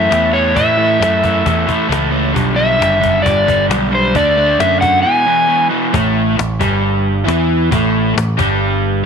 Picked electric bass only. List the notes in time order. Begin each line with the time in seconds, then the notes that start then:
0.11 E2
0.57 A2
1.00 F#2
1.46 E2
1.69 muted picked electric bass stroke
1.89 C#2
2.36 B1
2.80 F#1
3.26 G1
3.69 B1
4.15 D2
4.59 F#2
5.94 A1
6.38 A1
6.61 G1
7.27 E2
7.72 A1
8.16 A1
8.39 G1